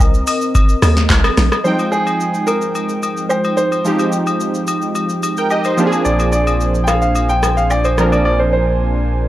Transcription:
0.00 0.24 C2 loud
0.00 1.61 C4 medium
0.00 1.61 A#4 medium
0.00 1.61 D#5 medium
0.00 kick loud
0.00 low woodblock medium
0.00 shaker medium
0.14 shaker medium
0.27 open hi-hat medium
0.27 high agogo medium
0.27 shaker loud
0.41 shaker medium
0.55 kick loud
0.55 high agogo medium
0.55 shaker medium
0.69 shaker medium
0.82 1.08 D#2 medium
0.82 cross-stick loud
0.82 open hi-hat medium
0.82 high agogo medium
0.82 shaker medium
0.97 snare medium
0.97 shaker medium
1.10 1.23 C2 medium
1.10 kick loud
1.10 snare medium
1.10 clap medium
1.10 shaker medium
1.24 cross-stick loud
1.24 high agogo medium
1.24 shaker medium
1.37 1.51 A#1 loud
1.37 cross-stick medium
1.37 snare medium
1.37 open hi-hat medium
1.37 shaker medium
1.52 cross-stick loud
1.52 high agogo medium
1.52 shaker medium
1.64 3.81 F3 medium
1.64 5.74 F3 medium
1.64 1.72 G3 soft
1.64 5.74 G#3 medium
1.64 3.82 C4 medium
1.64 5.74 D#4 medium
1.64 3.82 D#4 medium
1.64 1.93 C5 loud
1.64 5.74 G5 medium
1.64 3.82 G5 medium
1.64 shaker medium
1.72 3.84 G#3 medium
1.79 high agogo medium
1.79 shaker medium
1.92 2.49 G#4 loud
1.92 shaker medium
2.07 high agogo medium
2.07 shaker medium
2.21 shaker medium
2.34 shaker medium
2.47 3.32 A#4 medium
2.47 high agogo medium
2.47 shaker loud
2.62 shaker medium
2.75 high agogo medium
2.75 shaker medium
2.89 shaker soft
3.03 high agogo medium
3.03 shaker medium
3.17 shaker soft
3.29 3.55 C5 medium
3.29 low woodblock medium
3.29 shaker medium
3.44 high agogo medium
3.44 shaker soft
3.57 4.09 C5 loud
3.57 shaker medium
3.72 high agogo medium
3.72 shaker medium
3.85 5.74 F3 medium
3.85 5.74 G#3 medium
3.85 5.74 C4 medium
3.85 5.21 D#4 medium
3.85 5.21 G4 medium
3.85 shaker medium
3.99 high agogo medium
3.99 shaker medium
4.12 shaker medium
4.27 high agogo medium
4.27 shaker medium
4.41 shaker medium
4.55 shaker soft
4.67 high agogo medium
4.67 shaker medium
4.82 shaker medium
4.95 high agogo medium
4.95 shaker medium
5.09 shaker medium
5.23 high agogo medium
5.23 shaker medium
5.37 5.50 A#4 medium
5.37 5.50 G5 medium
5.37 shaker soft
5.50 5.65 G4 medium
5.50 5.64 D#5 medium
5.50 low woodblock medium
5.50 shaker medium
5.64 5.92 D#4 medium
5.64 5.91 C5 medium
5.64 high agogo medium
5.64 shaker medium
5.77 7.94 F3 medium
5.77 7.94 A#3 medium
5.77 7.94 C4 medium
5.77 9.28 D4 medium
5.77 7.95 D4 medium
5.77 5.86 G4 medium
5.77 9.28 C5 medium
5.77 9.28 G#5 medium
5.77 shaker medium
5.86 7.98 G#4 medium
5.92 high agogo medium
5.92 shaker medium
6.05 9.28 A#1 medium
6.05 6.31 D5 medium
6.05 shaker medium
6.20 high agogo medium
6.20 shaker medium
6.32 6.86 D5 medium
6.32 shaker medium
6.47 high agogo medium
6.47 shaker medium
6.61 shaker medium
6.75 shaker soft
6.84 7.00 F5 medium
6.84 6.88 G5 medium
6.84 cross-stick medium
6.84 shaker loud
6.88 high agogo medium
7.02 7.30 F5 medium
7.02 shaker medium
7.15 high agogo medium
7.15 shaker medium
7.29 7.58 G5 medium
7.29 shaker medium
7.43 cross-stick medium
7.43 high agogo medium
7.43 shaker medium
7.57 7.71 F5 loud
7.57 shaker soft
7.70 7.85 D5 medium
7.70 low woodblock medium
7.70 shaker medium
7.84 8.13 C5 medium
7.84 high agogo medium
7.84 shaker soft
7.98 9.28 F3 medium
7.98 9.28 A#3 medium
7.98 9.28 C4 medium
7.98 9.28 D4 medium
7.98 9.28 A#4 medium
7.98 cross-stick medium
7.98 shaker medium
8.12 8.24 D5 medium
8.12 high agogo medium
8.12 shaker medium
8.25 8.40 D5 loud
8.39 8.51 C5 medium
8.53 9.28 C5 medium

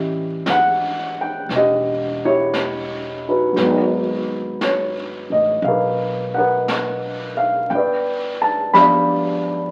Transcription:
0.00 0.42 A1 medium
0.00 3.56 E3 medium
0.00 3.57 G3 soft
0.00 3.58 C#4 soft
0.00 1.48 G4 medium
0.00 1.54 D#5 soft
0.46 1.45 G#1 medium
0.46 brush sweep soft
0.46 snare soft
0.46 hi-hat pedal soft
0.50 1.15 F#5 medium
1.21 1.53 G5 medium
1.49 3.53 E1 medium
1.49 brush sweep soft
1.49 snare soft
1.55 2.24 G4 soft
1.55 2.19 D#5 medium
2.25 3.55 E4 soft
2.25 3.56 G4 soft
2.25 3.22 C#5 medium
2.53 brush sweep soft
2.53 snare soft
2.53 hi-hat pedal soft
3.28 3.62 D#4 soft
3.28 5.30 F#4 soft
3.28 4.26 B4 medium
3.52 5.27 G#1 medium
3.52 7.69 F#3 medium
3.56 7.71 G#3 soft
3.56 7.72 B3 soft
3.56 brush sweep soft
3.56 snare soft
3.64 7.74 D#4 medium
4.61 5.34 C#5 medium
4.61 brush sweep soft
4.61 snare soft
4.61 hi-hat pedal soft
5.30 5.61 A1 soft
5.30 5.62 D#5 medium
5.62 7.66 B1 medium
5.62 6.31 F5 medium
5.62 brush sweep soft
5.68 6.37 A#4 soft
5.68 6.37 B4 soft
6.34 7.68 A#4 soft
6.34 7.34 F#5 medium
6.38 7.69 B4 soft
6.68 brush sweep soft
6.68 snare soft
6.68 hi-hat pedal soft
7.37 7.68 F5 medium
7.70 9.71 G1 medium
7.70 8.37 G5 medium
7.70 brush sweep soft
7.75 9.71 B4 medium
7.75 8.76 D5 medium
8.42 8.72 A5 medium
8.73 9.71 F3 soft
8.73 9.71 G3 soft
8.73 9.71 B3 soft
8.73 9.71 D4 soft
8.73 9.71 B5 medium
8.73 brush sweep soft
8.73 snare soft
8.73 hi-hat pedal soft
8.78 9.71 D5 medium
8.78 9.71 F5 medium

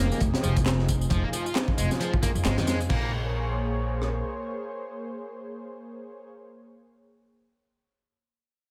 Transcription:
0.00 2.86 F3 medium
0.00 0.20 A#3 medium
0.00 2.86 D#4 medium
0.00 0.86 G4 medium
0.00 2.86 G#4 medium
0.11 snare soft
0.11 tambourine soft
0.20 0.31 F1 loud
0.20 kick medium
0.20 closed hi-hat medium
0.20 tambourine soft
0.34 snare loud
0.34 closed hi-hat medium
0.42 1.06 F1 loud
0.42 0.56 F3 medium
0.42 snare soft
0.42 tambourine medium
0.56 kick medium
0.56 closed hi-hat medium
0.56 tambourine soft
0.66 snare loud
0.66 clap loud
0.66 closed hi-hat medium
0.66 tambourine soft
0.79 snare soft
0.88 2.88 F4 medium
0.88 kick medium
0.88 closed hi-hat medium
0.88 tambourine medium
1.01 tambourine soft
1.10 1.20 F1 loud
1.10 1.23 F3 loud
1.10 kick loud
1.10 closed hi-hat medium
1.10 tambourine soft
1.23 1.28 A#3 medium
1.33 1.45 F3 medium
1.33 closed hi-hat medium
1.33 tambourine medium
1.46 1.54 F4 medium
1.46 tambourine soft
1.55 snare loud
1.55 clap loud
1.55 closed hi-hat medium
1.55 tambourine soft
1.68 kick loud
1.77 1.87 F1 medium
1.77 1.89 G#3 loud
1.77 closed hi-hat medium
1.77 tambourine medium
1.91 snare soft
1.91 tambourine soft
2.00 2.12 F3 loud
2.00 closed hi-hat medium
2.00 tambourine soft
2.14 kick loud
2.22 2.29 A#3 loud
2.22 kick medium
2.22 closed hi-hat medium
2.22 tambourine medium
2.35 2.42 F2 loud
2.35 tambourine soft
2.45 2.54 G#1 loud
2.45 2.56 G#3 medium
2.45 snare loud
2.45 clap loud
2.45 closed hi-hat medium
2.45 tambourine soft
2.57 2.86 F2 medium
2.57 2.66 D#3 medium
2.57 snare loud
2.57 closed hi-hat medium
2.67 2.78 G#3 loud
2.67 snare loud
2.67 closed hi-hat medium
2.67 tambourine medium
2.80 tambourine soft
2.89 4.20 A#1 loud
2.89 3.10 A#3 medium
2.89 6.29 A#3 medium
2.89 6.29 G#4 medium
2.89 6.29 C5 medium
2.89 6.29 C#5 medium
2.89 kick loud
2.89 crash medium
4.02 cross-stick medium

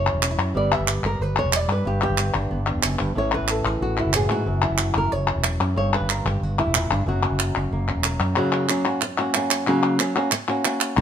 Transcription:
0.00 0.10 F#1 medium
0.00 0.55 F#2 medium
0.00 0.56 C#5 loud
0.06 clap soft
0.13 0.34 E1 medium
0.22 0.31 C#4 soft
0.22 clap medium
0.31 0.55 E4 soft
0.38 0.52 F#2 medium
0.38 clap soft
0.55 0.76 G1 medium
0.55 1.83 G3 medium
0.55 2.51 B3 soft
0.55 1.06 G4 soft
0.55 0.72 D5 loud
0.72 0.89 E5 loud
0.79 1.00 G1 medium
0.88 1.37 D5 loud
0.88 clap medium
1.03 1.17 G1 medium
1.03 1.22 A#4 medium
1.19 1.41 G1 medium
1.19 1.70 B4 loud
1.36 1.56 C#5 loud
1.36 clap soft
1.44 1.65 E1 medium
1.53 1.87 D5 loud
1.53 clap medium
1.68 1.82 G2 medium
1.68 2.20 B4 medium
1.68 clap soft
1.85 2.06 G1 medium
1.85 2.82 G2 medium
1.85 2.02 G4 loud
2.01 3.17 G4 loud
2.01 clap soft
2.10 2.31 G1 medium
2.18 clap medium
2.34 2.48 G1 medium
2.34 2.66 D4 soft
2.34 clap soft
2.51 2.72 G1 medium
2.51 3.14 B3 soft
2.66 3.14 D4 soft
2.66 clap soft
2.75 2.82 E1 medium
2.83 2.98 F#1 medium
2.83 2.98 F#2 medium
2.83 clap medium
2.99 3.14 G1 medium
2.99 3.15 G2 medium
2.99 clap soft
3.15 3.37 A1 medium
3.15 4.13 A2 medium
3.15 5.76 E3 soft
3.15 4.45 C#4 soft
3.15 3.67 E4 soft
3.15 3.33 C#5 medium
3.32 3.50 B4 medium
3.32 clap soft
3.41 3.61 A1 medium
3.48 3.82 A4 medium
3.48 clap medium
3.65 3.79 A1 medium
3.65 3.98 G#4 medium
3.65 clap soft
3.81 4.02 A1 medium
3.81 4.31 F#4 medium
3.97 4.15 E4 medium
3.97 clap soft
4.05 4.26 F#1 medium
4.13 4.29 A2 medium
4.13 4.47 G#4 medium
4.13 clap medium
4.29 4.46 G#2 medium
4.29 4.44 A2 medium
4.29 4.80 F#4 medium
4.29 clap soft
4.46 4.67 F#1 medium
4.46 5.76 F#2 medium
4.62 5.12 E4 medium
4.62 clap soft
4.70 4.91 F#1 medium
4.78 4.96 F#4 medium
4.78 clap medium
4.94 5.09 F#1 medium
4.94 5.12 A#4 medium
4.94 clap soft
5.12 5.32 F#1 medium
5.12 5.76 C#5 loud
5.27 clap soft
5.36 5.57 E1 medium
5.44 clap medium
5.60 5.74 F#2 medium
5.60 5.75 C#4 soft
5.60 clap soft
5.76 5.97 G1 medium
5.76 6.74 G2 medium
5.76 5.93 C#5 loud
5.93 6.10 B4 medium
5.93 clap soft
6.00 6.21 G1 medium
6.09 6.27 A#4 medium
6.09 clap medium
6.25 6.39 G1 loud
6.25 6.43 G4 medium
6.41 6.62 G1 medium
6.41 6.91 F#4 loud
6.59 6.75 E4 medium
6.59 clap soft
6.65 6.86 E1 medium
6.74 6.90 A#2 medium
6.74 6.91 E4 medium
6.74 clap medium
6.90 7.04 G1 medium
6.90 7.06 G2 medium
6.90 7.07 D4 medium
6.90 clap soft
7.06 7.27 F#1 medium
7.06 9.67 F#2 medium
7.06 8.35 F#3 soft
7.06 7.71 A#3 soft
7.06 7.22 C#4 soft
7.06 8.04 F#4 medium
7.23 7.55 C#4 soft
7.23 clap soft
7.30 7.51 F#1 medium
7.39 clap medium
7.55 7.69 F#1 medium
7.55 7.88 C#4 soft
7.55 clap soft
7.71 7.92 F#1 medium
7.71 8.35 A#3 soft
7.88 8.36 C#4 soft
7.88 clap soft
7.95 8.16 E1 medium
8.04 8.35 A#4 soft
8.04 clap medium
8.20 8.34 F#2 medium
8.20 clap soft
8.36 8.68 C#3 medium
8.36 8.68 F#3 medium
8.36 8.68 A#3 medium
8.36 8.69 C#4 medium
8.36 8.69 F#4 medium
8.36 clap soft
8.52 clap medium
8.69 8.85 F#3 medium
8.69 8.85 A#3 medium
8.69 8.85 C#4 medium
8.69 8.84 F#4 medium
8.69 clap medium
8.86 9.01 A#3 soft
8.86 9.01 C#4 soft
8.86 9.01 F#4 medium
9.01 muted nylon-string guitar stroke medium
9.01 clap medium
9.18 9.35 A#3 soft
9.18 9.34 C#4 soft
9.18 9.34 F#4 medium
9.18 clap soft
9.34 9.66 A#3 soft
9.34 9.67 C#4 medium
9.34 9.67 F#4 medium
9.34 clap medium
9.51 clap medium
9.67 9.99 C#3 medium
9.67 9.99 F#3 medium
9.67 9.99 A#3 medium
9.67 9.99 C#4 medium
9.67 10.00 F#4 medium
9.67 clap soft
9.99 10.15 F#3 medium
9.99 10.15 A#3 medium
9.99 10.15 C#4 medium
9.99 10.14 F#4 medium
9.99 clap medium
10.16 10.31 A#3 soft
10.16 10.31 C#4 medium
10.16 10.31 F#4 medium
10.16 clap soft
10.31 muted nylon-string guitar stroke medium
10.31 clap medium
10.48 10.65 A#3 soft
10.48 10.64 C#4 medium
10.48 10.64 F#4 medium
10.48 clap soft
10.65 10.97 A#3 soft
10.65 10.97 C#4 medium
10.65 10.97 F#4 medium
10.65 clap medium
10.81 clap medium
10.97 11.01 B1 loud
10.97 muted nylon-string guitar stroke medium
10.97 clap soft

